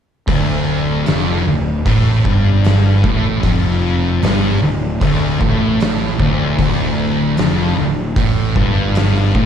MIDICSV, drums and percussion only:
0, 0, Header, 1, 2, 480
1, 0, Start_track
1, 0, Key_signature, -1, "minor"
1, 0, Tempo, 788436
1, 172, Time_signature, 4, 2, 24, 8
1, 5757, End_track
2, 0, Start_track
2, 0, Title_t, "Drums"
2, 169, Note_on_c, 9, 36, 99
2, 170, Note_on_c, 9, 46, 62
2, 230, Note_off_c, 9, 36, 0
2, 231, Note_off_c, 9, 46, 0
2, 646, Note_on_c, 9, 46, 56
2, 660, Note_on_c, 9, 38, 106
2, 707, Note_off_c, 9, 46, 0
2, 721, Note_off_c, 9, 38, 0
2, 1131, Note_on_c, 9, 36, 111
2, 1132, Note_on_c, 9, 46, 66
2, 1192, Note_off_c, 9, 36, 0
2, 1192, Note_off_c, 9, 46, 0
2, 1370, Note_on_c, 9, 36, 103
2, 1431, Note_off_c, 9, 36, 0
2, 1608, Note_on_c, 9, 46, 60
2, 1622, Note_on_c, 9, 38, 114
2, 1669, Note_off_c, 9, 46, 0
2, 1683, Note_off_c, 9, 38, 0
2, 1850, Note_on_c, 9, 36, 108
2, 1911, Note_off_c, 9, 36, 0
2, 2088, Note_on_c, 9, 46, 58
2, 2090, Note_on_c, 9, 36, 106
2, 2149, Note_off_c, 9, 46, 0
2, 2151, Note_off_c, 9, 36, 0
2, 2572, Note_on_c, 9, 46, 63
2, 2586, Note_on_c, 9, 38, 107
2, 2633, Note_off_c, 9, 46, 0
2, 2647, Note_off_c, 9, 38, 0
2, 3052, Note_on_c, 9, 36, 106
2, 3055, Note_on_c, 9, 46, 59
2, 3113, Note_off_c, 9, 36, 0
2, 3116, Note_off_c, 9, 46, 0
2, 3292, Note_on_c, 9, 36, 102
2, 3353, Note_off_c, 9, 36, 0
2, 3532, Note_on_c, 9, 46, 56
2, 3546, Note_on_c, 9, 38, 120
2, 3593, Note_off_c, 9, 46, 0
2, 3607, Note_off_c, 9, 38, 0
2, 3772, Note_on_c, 9, 36, 107
2, 3833, Note_off_c, 9, 36, 0
2, 4010, Note_on_c, 9, 36, 98
2, 4010, Note_on_c, 9, 46, 64
2, 4071, Note_off_c, 9, 36, 0
2, 4071, Note_off_c, 9, 46, 0
2, 4488, Note_on_c, 9, 46, 60
2, 4502, Note_on_c, 9, 38, 110
2, 4549, Note_off_c, 9, 46, 0
2, 4563, Note_off_c, 9, 38, 0
2, 4969, Note_on_c, 9, 46, 60
2, 4970, Note_on_c, 9, 36, 114
2, 5030, Note_off_c, 9, 46, 0
2, 5031, Note_off_c, 9, 36, 0
2, 5210, Note_on_c, 9, 36, 97
2, 5271, Note_off_c, 9, 36, 0
2, 5448, Note_on_c, 9, 46, 65
2, 5462, Note_on_c, 9, 38, 112
2, 5509, Note_off_c, 9, 46, 0
2, 5523, Note_off_c, 9, 38, 0
2, 5692, Note_on_c, 9, 36, 111
2, 5752, Note_off_c, 9, 36, 0
2, 5757, End_track
0, 0, End_of_file